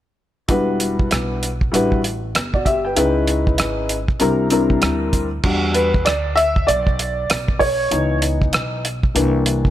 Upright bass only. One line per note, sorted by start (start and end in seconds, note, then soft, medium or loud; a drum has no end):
0.49 1.08 E1 medium
1.12 1.70 B1 medium
1.74 2.32 A1 medium
2.35 2.94 G1 medium
2.97 3.56 C#2 medium
3.59 4.06 G#1 medium
4.09 muted upright bass stroke soft
4.21 4.79 C2 medium
4.83 5.41 D2 medium
5.44 6.07 E2 medium
6.07 6.65 D2 medium
6.69 7.27 B1 medium
7.30 7.89 B1 medium
7.92 8.50 C#2 medium
8.53 9.12 B1 medium
9.15 9.70 C2 loud